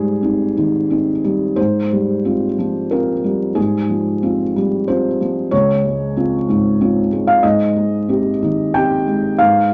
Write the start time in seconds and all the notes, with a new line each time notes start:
Already playing: G#2 G3 G#4
0.23 C4 D#4
0.57 D#3
0.90 C4 D#4
1.24 G3
1.56 G#2 C5
1.92 G3
2.25 C4 F4
2.58 F3
2.91 C4 F4 A#4
3.24 G3
3.55 G#2 G#4
3.89 F3
4.23 C4 F4
4.56 G3
4.88 C4 F4 C5
5.21 F3
5.51 C#2 C#5
5.85 G#3
6.17 C4 F4
6.49 G#2
6.81 C4 F4
7.13 G#3
7.27 F5
7.43 G#2 D#5
7.76 G#3
8.09 C4 G4
8.42 D#3
8.74 C4 G4 G5
9.07 G#3
9.38 G#2 F5